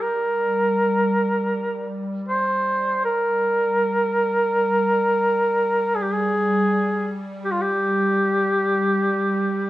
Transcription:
0.01 duduk A#4
0.08 ambient pad G3
2.28 duduk C5
3.05 duduk A#4
5.96 duduk G#4
6.02 duduk G4
6.13 duduk G#4
7.45 duduk G4
7.52 duduk F4
7.62 duduk G4

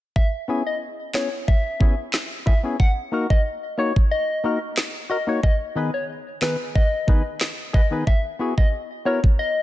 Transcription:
0.16 soft synth lead E5, kick
0.48 synth stab B3 C#4 E4 G#4
0.67 soft synth lead D#5
1.14 synth stab B3 C#4 E4 G#4, soft synth lead C#5, snare, clap
1.48 soft synth lead E5, kick
1.80 synth stab B3 C#4 E4 G#4, kick
2.13 snare, clap
2.46 synth stab E4 G#4, soft synth lead E5, kick
2.63 synth stab B3 C#4 E4 G#4
2.80 soft synth lead F#5, kick
3.12 synth stab A#3 D#4 F#4 A#4
3.30 soft synth lead D#5, kick
3.78 synth stab A#3 D#4 F#4 C#5, soft synth lead C#5
3.96 kick
4.11 soft synth lead D#5
4.44 synth stab A#3 D#4 F#4 A#4
4.77 snare, clap
5.10 synth stab F#4 A#4, soft synth lead D#5
5.27 synth stab A#3 D#4 F#4 C#5
5.43 soft synth lead D#5, kick
5.75 synth stab D#3 B3 D#4 G#4 B4
5.94 soft synth lead C#5
6.41 synth stab D#3 B3 D#4 G#4 B4, soft synth lead B4, snare, clap
6.75 soft synth lead D#5, kick
7.07 synth stab D#3 B3 D#4 G#4 B4, kick
7.41 snare, clap
7.73 synth stab G#4 B4, soft synth lead D#5, kick
7.91 synth stab D#3 B3 D#4 G#4 B4
8.07 soft synth lead E5, kick
8.39 synth stab B3 E4 F#4 G#4
8.58 soft synth lead D#5, kick
9.05 synth stab B3 E4 F#4 A#4, soft synth lead C#5
9.24 kick
9.39 soft synth lead D#5

